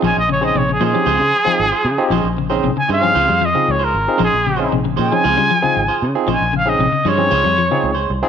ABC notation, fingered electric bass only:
X:1
M:4/4
L:1/16
Q:1/4=115
K:Bbdor
V:1 name="Fingered electric bass" clef=bass
B,,, B,,,3 B,,,2 B,, z D,, D, z2 A,,, z D, z | B,,, B,,,3 B,,, z G,,2 D,, F,,2 z D,,2 A,,, z | B,,, B,,,3 B,,,2 B,, z D,, D, z2 A,,, z D, z | B,,, B,,,3 B,,, z G,,2 D,, F,,2 z D,,2 C,, z |]